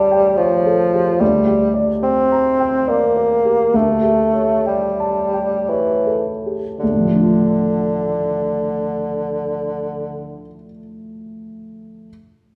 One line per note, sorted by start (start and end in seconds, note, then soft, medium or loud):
0.00 1.17 D2 soft
0.00 0.39 G3 medium
0.00 0.94 G4 soft
0.00 0.39 C#5 soft
0.00 0.11 G5 soft
0.00 0.28 A5 soft
0.11 0.55 G5 soft
0.37 1.21 F3 medium
0.37 0.83 C#5 soft
0.66 1.10 A4 soft
0.94 1.21 G4 soft
1.20 3.70 D2 soft
1.20 1.74 G3 soft
1.47 1.91 G4 soft
1.74 2.19 D5 soft
2.03 2.90 C4 medium
2.03 2.49 G5 soft
2.32 2.77 A#5 soft
2.60 3.05 G5 soft
2.87 3.77 A#3 soft
2.87 3.33 D5 soft
3.17 3.62 A#4 soft
3.45 3.74 G4 soft
3.74 6.77 D2 soft
3.74 4.67 A3 soft
4.03 4.53 G4 soft
4.33 4.85 C#5 soft
4.66 5.71 G3 soft
4.66 5.20 G5 soft
5.00 5.55 A5 soft
5.34 5.91 G5 soft
5.69 6.26 E3 soft
5.69 6.30 C#5 soft
6.07 6.67 A4 soft
6.46 6.82 G4 soft
6.79 10.36 D3 soft
6.83 10.40 D2 soft
6.91 10.48 A2 soft
6.99 10.56 F3 soft
7.07 10.63 A3 soft
7.14 10.71 D4 soft
7.22 10.78 F4 soft